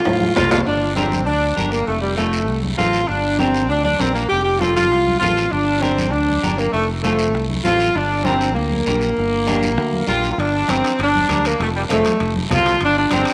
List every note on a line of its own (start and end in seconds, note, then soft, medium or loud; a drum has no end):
0.00 0.34 F4 medium
0.05 0.31 A2 loud
0.05 cowbell medium
0.05 high conga medium
0.05 high timbale medium
0.05 long guiro medium
0.21 high conga medium
0.36 0.61 C2 medium
0.36 0.57 C4 medium
0.36 0.50 F4 medium
0.36 0.58 F4 medium
0.36 0.58 A4 medium
0.36 low conga medium
0.36 low timbale loud
0.36 short guiro medium
0.51 0.58 F4 medium
0.51 low conga medium
0.51 low timbale loud
0.51 short guiro medium
0.66 1.28 G1 medium
0.66 0.95 D4 medium
0.66 high conga soft
0.66 long guiro medium
0.95 1.24 C4 medium
0.95 1.18 D4 medium
0.95 1.18 G4 medium
0.95 1.18 A#4 medium
0.95 high conga medium
0.95 short guiro medium
1.11 high conga medium
1.11 short guiro medium
1.26 1.52 D2 medium
1.26 1.69 D4 medium
1.26 high conga soft
1.26 long guiro medium
1.56 1.82 G1 medium
1.56 1.78 D4 medium
1.56 1.78 G4 medium
1.56 1.78 A#4 medium
1.56 high conga medium
1.56 short guiro medium
1.71 1.87 A#3 medium
1.71 short guiro medium
1.87 2.49 F1 medium
1.87 2.02 A3 medium
1.87 high conga soft
1.87 long guiro medium
2.01 2.16 G3 medium
2.16 2.60 A3 medium
2.16 2.39 C4 medium
2.16 2.39 F4 medium
2.16 2.39 A4 medium
2.16 high conga medium
2.16 short guiro medium
2.33 short guiro medium
2.48 2.73 C2 medium
2.48 high conga soft
2.48 long guiro medium
2.63 high conga medium
2.77 3.03 A1 medium
2.77 3.00 C4 medium
2.77 3.06 F4 medium
2.77 3.00 F4 medium
2.77 3.00 A4 medium
2.77 high conga medium
2.77 short guiro medium
2.93 short guiro medium
3.07 3.70 G1 medium
3.07 3.39 D4 medium
3.07 high conga soft
3.07 long guiro medium
3.38 3.67 C4 medium
3.38 3.60 D4 medium
3.38 3.61 G4 medium
3.38 3.61 A#4 medium
3.38 high conga medium
3.38 short guiro medium
3.54 short guiro medium
3.69 3.94 D2 medium
3.69 3.83 D4 medium
3.69 high conga soft
3.69 long guiro medium
3.84 3.99 D4 medium
3.84 high conga medium
3.99 4.25 A#1 medium
3.99 4.15 C4 medium
3.99 4.21 D4 medium
3.99 4.21 G4 soft
3.99 4.22 A#4 medium
3.99 high conga medium
3.99 short guiro medium
4.14 4.29 A#3 medium
4.14 short guiro medium
4.28 4.91 F1 medium
4.28 4.42 G4 loud
4.28 high conga soft
4.28 long guiro medium
4.43 4.59 G4 medium
4.59 4.82 C4 medium
4.59 4.74 F4 medium
4.59 4.82 F4 medium
4.59 4.83 A4 medium
4.59 high conga medium
4.59 short guiro medium
4.76 5.17 F4 medium
4.76 high conga medium
4.76 short guiro medium
4.91 5.16 C2 medium
4.91 high conga soft
4.91 long guiro medium
5.07 high conga medium
5.19 5.47 A1 medium
5.19 5.43 C4 medium
5.19 5.48 F4 medium
5.19 5.43 F4 medium
5.19 5.43 A4 medium
5.19 high conga medium
5.19 short guiro medium
5.37 short guiro medium
5.51 6.12 G1 medium
5.51 5.82 D4 medium
5.51 high conga soft
5.51 long guiro medium
5.81 6.12 C4 medium
5.81 6.04 D4 medium
5.81 6.04 G4 medium
5.81 6.04 A#4 medium
5.81 high conga medium
5.81 short guiro medium
5.98 high conga medium
5.98 short guiro medium
6.10 6.37 D2 medium
6.10 6.57 D4 medium
6.10 high conga soft
6.10 long guiro medium
6.29 high conga medium
6.43 6.68 G1 medium
6.43 6.64 D4 medium
6.43 6.65 G4 medium
6.43 6.65 A#4 medium
6.43 high conga medium
6.43 short guiro medium
6.58 6.73 A#3 medium
6.58 short guiro medium
6.72 7.34 F1 medium
6.72 6.87 A3 medium
6.72 high conga soft
6.72 long guiro medium
7.02 7.46 A3 medium
7.02 7.25 C4 medium
7.02 7.26 F4 medium
7.02 7.26 A4 medium
7.02 high conga medium
7.02 short guiro medium
7.19 short guiro medium
7.34 7.59 C2 medium
7.34 high conga soft
7.34 long guiro medium
7.50 high conga medium
7.64 7.89 A1 medium
7.64 7.86 C4 medium
7.64 7.93 F4 medium
7.64 7.87 F4 medium
7.64 7.87 A4 medium
7.64 high conga medium
7.64 short guiro medium
7.80 short guiro medium
7.95 8.57 G1 loud
7.95 8.25 D4 medium
7.95 high conga soft
7.95 long guiro medium
8.24 8.55 C4 medium
8.24 8.47 D4 medium
8.24 8.47 G4 medium
8.24 8.47 A#4 medium
8.24 high conga medium
8.24 short guiro medium
8.41 short guiro medium
8.54 8.81 D2 medium
8.54 10.03 A#3 medium
8.54 high conga soft
8.54 long guiro medium
8.71 high conga medium
8.86 9.11 A#1 medium
8.86 9.08 D4 medium
8.86 9.08 G4 medium
8.86 9.08 A#4 medium
8.86 high conga medium
8.86 short guiro medium
9.01 short guiro medium
9.17 9.78 G1 medium
9.17 high conga soft
9.17 long guiro medium
9.47 9.68 D4 medium
9.47 9.69 G4 medium
9.47 9.68 A#4 medium
9.47 high conga medium
9.47 short guiro medium
9.62 high conga medium
9.62 short guiro medium
9.78 10.02 D2 medium
9.78 high conga soft
9.78 long guiro medium
9.93 high conga medium
10.07 10.32 A#1 medium
10.07 10.29 D4 medium
10.07 10.29 F4 medium
10.07 10.29 G4 medium
10.07 10.29 A#4 medium
10.07 high conga medium
10.07 short guiro medium
10.23 short guiro medium
10.30 10.38 F4 medium
10.38 10.62 G1 loud
10.38 10.69 D4 medium
10.38 high conga soft
10.38 high timbale medium
10.38 long guiro medium
10.68 10.81 G1 medium
10.68 10.99 C4 medium
10.68 10.90 D4 medium
10.68 10.90 G4 medium
10.68 10.90 A#4 medium
10.68 high conga medium
10.68 high timbale medium
10.68 short guiro medium
10.84 high timbale medium
10.84 short guiro medium
10.99 11.23 G1 medium
10.99 11.43 D4 medium
10.99 high conga soft
10.99 high timbale medium
10.99 long guiro medium
11.15 high conga medium
11.29 11.53 D2 medium
11.29 11.50 D4 medium
11.29 11.50 G4 medium
11.29 11.51 A#4 medium
11.29 high conga medium
11.29 high timbale medium
11.29 short guiro medium
11.45 11.61 A#3 medium
11.45 high timbale medium
11.45 short guiro medium
11.60 11.84 F1 loud
11.60 11.68 A3 medium
11.60 high conga soft
11.60 high timbale medium
11.60 long guiro medium
11.76 11.83 G3 medium
11.89 12.03 F1 medium
11.89 12.33 A3 medium
11.89 12.11 C4 medium
11.89 12.11 F4 medium
11.89 12.11 A4 medium
11.89 high conga medium
11.89 high timbale medium
11.89 short guiro medium
12.05 high conga medium
12.05 high timbale medium
12.05 short guiro medium
12.20 12.45 F1 loud
12.20 high conga soft
12.20 high timbale medium
12.20 long guiro medium
12.36 high conga medium
12.50 12.75 C2 medium
12.50 12.71 C4 medium
12.50 12.72 F4 medium
12.50 12.80 F4 medium
12.50 12.72 A4 medium
12.50 high conga medium
12.50 low conga medium
12.50 high timbale medium
12.50 short guiro medium
12.66 high timbale medium
12.66 short guiro medium
12.81 13.05 G1 loud
12.81 12.96 D4 loud
12.81 high conga soft
12.81 high timbale medium
12.81 long guiro medium
12.97 13.11 D4 medium
13.10 13.24 G1 medium
13.10 13.34 C4 medium
13.10 13.32 D4 medium
13.10 13.32 G4 medium
13.10 13.32 A#4 medium
13.10 high conga medium
13.10 high timbale medium
13.10 short guiro medium
13.25 high timbale medium
13.25 short guiro medium